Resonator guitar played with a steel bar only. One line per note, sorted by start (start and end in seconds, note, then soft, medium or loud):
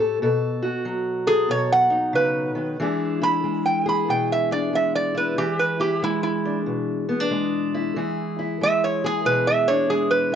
1.27 1.48 G#4 loud
1.51 1.71 C#5 loud
1.72 2.13 F#5 loud
2.15 2.77 B4 medium
3.23 3.64 B5 loud
3.66 3.86 G5 medium
3.89 4.09 B5 medium
4.10 4.30 G5 loud
4.32 4.52 E5 medium
4.52 4.73 D5 medium
4.75 4.95 E5 medium
4.95 5.16 D5 medium
5.17 5.38 B4 medium
5.38 5.59 G4 medium
5.59 5.80 B4 medium
5.81 6.02 G4 medium
6.04 6.22 E4 medium
6.23 6.58 E4 medium
8.63 8.83 E5 loud
8.84 9.04 C#5 medium
9.06 9.26 G#4 loud
9.26 9.47 B4 loud
9.47 9.68 E5 loud
9.68 9.89 C#5 loud
9.90 10.11 G#4 medium
10.11 10.32 B4 medium